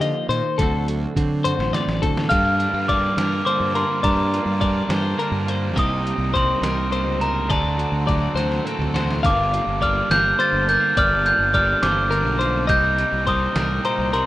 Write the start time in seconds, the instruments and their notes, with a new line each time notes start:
Already playing: clean electric guitar A#3 D#4 A#4
0.00 fingered electric bass D3, clean electric guitar F3 D#5, closed hi-hat
0.29 fingered electric bass A#2, clean electric guitar D#3 C5, closed hi-hat
0.58 fingered electric bass D2, clean electric guitar D3 F#3 A4, kick, closed hi-hat
0.62 clean electric guitar C4 F#4 A4
0.88 clean electric guitar F#4, closed hi-hat
1.16 fingered electric bass D3, clean electric guitar F#3 C4, kick, closed hi-hat
1.44 clean electric guitar F#4 C5, closed hi-hat, high tom
1.59 fingered electric bass A1, snare
1.73 clean electric guitar A2 C4 D5, snare, closed hi-hat
1.88 fingered electric bass A1, snare
2.02 fingered electric bass D3, clean electric guitar F#4 A4, kick, closed hi-hat
2.17 snare
2.29 overdriven electric guitar G2 D3 G3 A#3 D4, clean electric guitar G2 G4 F5, fingered electric bass G2, glockenspiel F6, kick, closed hi-hat
2.45 clean electric guitar A#4
2.59 overdriven electric guitar A#3 D4, clean electric guitar D4, closed hi-hat
2.63 overdriven electric guitar G3
2.74 fingered electric bass G2, clean electric guitar F4
2.88 overdriven electric guitar D3 G3 A#3, clean electric guitar G3 A#4 D5, glockenspiel D6, kick, closed hi-hat
2.92 overdriven electric guitar D4
3.16 fingered electric bass G2, overdriven electric guitar G3 A#3 D4, clean electric guitar D4 A#4, snare, closed hi-hat
3.32 clean electric guitar F4
3.45 clean electric guitar D3 A#3 C5, overdriven electric guitar D3 G3 A#3, glockenspiel D6, closed hi-hat
3.49 overdriven electric guitar D4
3.60 fingered electric bass G2
3.75 overdriven electric guitar G3 A#3 D4, clean electric guitar F4 A#4, glockenspiel C6, closed hi-hat
4.03 overdriven electric guitar G2 D3 G3 A#3 D4, fingered electric bass G2, clean electric guitar G2 A#4 D5, glockenspiel A#5, kick, closed hi-hat
4.31 overdriven electric guitar G3 A#3 D4, clean electric guitar F4, closed hi-hat
4.46 fingered electric bass G2
4.60 overdriven electric guitar D3 G3 A#3 D4, clean electric guitar G3 A#4 D5, kick, closed hi-hat
4.88 fingered electric bass G2, overdriven electric guitar G3 A#3 D4, clean electric guitar D4 C5, snare, closed hi-hat
5.02 clean electric guitar F4
5.17 clean electric guitar D3 A#3 A#4, overdriven electric guitar D3 G3 A#3 D4, closed hi-hat
5.32 fingered electric bass G2
5.47 overdriven electric guitar A#3 D4, clean electric guitar F4 C5, closed hi-hat
5.51 overdriven electric guitar G3
5.74 fingered electric bass C2, clean electric guitar C3 G3 A#3 D#4 A#4 D#5, overdriven electric guitar C3 G3 C4 D#4, kick, closed hi-hat
5.79 glockenspiel D#6
6.03 overdriven electric guitar G3 C4 D#4, clean electric guitar D#4, closed hi-hat
6.18 fingered electric bass C2
6.33 overdriven electric guitar C3 G3 C4 D#4, clean electric guitar G3 A#4 C5, kick, closed hi-hat
6.37 glockenspiel C6
6.62 fingered electric bass C2, overdriven electric guitar G3 C4 D#4, clean electric guitar D#4 A#4, snare, closed hi-hat
6.90 clean electric guitar G2 A#3 C5, overdriven electric guitar C3 G3 C4 D#4, closed hi-hat
7.06 fingered electric bass C#2
7.19 overdriven electric guitar G3 C4 D#4, clean electric guitar D#4 A#4, glockenspiel A#5, closed hi-hat
7.48 fingered electric bass D2, overdriven electric guitar D3 A3 C4 F#4, clean electric guitar D3 G4 D5, glockenspiel A5, kick, closed hi-hat
7.63 clean electric guitar A4
7.76 overdriven electric guitar A3 C4 F#4, clean electric guitar F#4, closed hi-hat
7.92 fingered electric bass D2
8.06 overdriven electric guitar D3 A3 C4 F#4, clean electric guitar F#3 G4 D5, kick, closed hi-hat
8.22 clean electric guitar A4
8.35 fingered electric bass D2, overdriven electric guitar C4 F#4, clean electric guitar F#4 C5, snare, closed hi-hat
8.39 overdriven electric guitar A3
8.52 snare
8.64 clean electric guitar A2 A#3 A4, overdriven electric guitar D3 A3 C4 F#4, closed hi-hat
8.79 fingered electric bass D2, clean electric guitar C4, mid tom
8.94 overdriven electric guitar A3 C4 F#4, clean electric guitar F#4 C5, snare, closed hi-hat
9.11 snare
9.22 fingered electric bass G1, overdriven electric guitar G2 D3 G3 A#3 D4, clean electric guitar G2 A#4 F5, glockenspiel D6, kick, closed hi-hat
9.51 overdriven electric guitar G3 A#3 D4, clean electric guitar F4, closed hi-hat
9.67 fingered electric bass G1
9.81 overdriven electric guitar D3 G3 A#3 D4, clean electric guitar G3 A#4 D5, glockenspiel F6, kick, closed hi-hat
10.09 fingered electric bass G1, overdriven electric guitar G3 A#3 D4, clean electric guitar F4 A#4, glockenspiel G6, snare, closed hi-hat
10.38 overdriven electric guitar D3 G3 A#3 D4, clean electric guitar D3 A#3 C5, glockenspiel A6, closed hi-hat
10.53 fingered electric bass G1
10.67 overdriven electric guitar G3 A#3 D4, clean electric guitar D4 A#4, glockenspiel G6, closed hi-hat
10.80 clean electric guitar F4
10.95 fingered electric bass G1, overdriven electric guitar G2 D3 G3 A#3 D4, clean electric guitar G2 A#4 D5, glockenspiel F6, kick, closed hi-hat
11.24 overdriven electric guitar G3 A#3 D4, clean electric guitar F4, glockenspiel G6, closed hi-hat
11.39 fingered electric bass G1
11.53 overdriven electric guitar D3 G3 A#3 D4, clean electric guitar G3 A#4 D5, glockenspiel F6, kick, closed hi-hat
11.82 fingered electric bass G1, overdriven electric guitar G3 A#3 D4, clean electric guitar F4 C5, glockenspiel D6, snare, closed hi-hat
12.10 clean electric guitar D3 A#3 A#4, overdriven electric guitar D3 G3 A#3, closed hi-hat
12.15 overdriven electric guitar D4
12.26 fingered electric bass B1
12.39 overdriven electric guitar A#3 D4, clean electric guitar F4 C5, closed hi-hat
12.43 overdriven electric guitar G3
12.66 fingered electric bass C2, overdriven electric guitar C3 G3 C4 D#4, clean electric guitar C3 G4 D#5, glockenspiel G6, kick, closed hi-hat
12.84 clean electric guitar A#4
12.96 overdriven electric guitar G3 C4 D#4, clean electric guitar D#4, closed hi-hat
13.12 fingered electric bass C2
13.24 overdriven electric guitar C3 G3 C4 D#4, clean electric guitar C5, kick, closed hi-hat
13.28 clean electric guitar G3 A#4, glockenspiel D#6
13.53 fingered electric bass C2, clean electric guitar A2 A#4, overdriven electric guitar G3 C4 D#4, snare, closed hi-hat
13.81 clean electric guitar A#2, overdriven electric guitar C3 G3 C4 D#4, glockenspiel A#5, closed hi-hat
13.85 clean electric guitar C5
13.99 fingered electric bass C2
14.10 overdriven electric guitar G3 C4 D#4, clean electric guitar A#4, glockenspiel C6, closed hi-hat
14.15 clean electric guitar C3